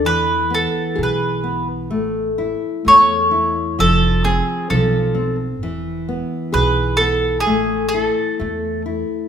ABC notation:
X:1
M:2/4
L:1/16
Q:1/4=64
K:Ephr
V:1 name="Mandolin"
B2 A2 B3 z | z4 ^c4 | A2 ^G2 A3 z | z4 B2 A2 |
^G2 A4 z2 |]
V:2 name="Nylon-string guitar"
E,2 B,2 ^G2 B,2 | A,2 E2 A,2 E2 | F,2 C2 F,2 C2 | E,2 B,2 ^G2 B,2 |
A,2 E2 A,2 E2 |]
V:3 name="Upright bass" clef=bass
E,,4 B,,,4 | A,,,4 E,,4 | F,,,4 B,,,4 | E,,,4 B,,,4 |
A,,,4 E,,4 |]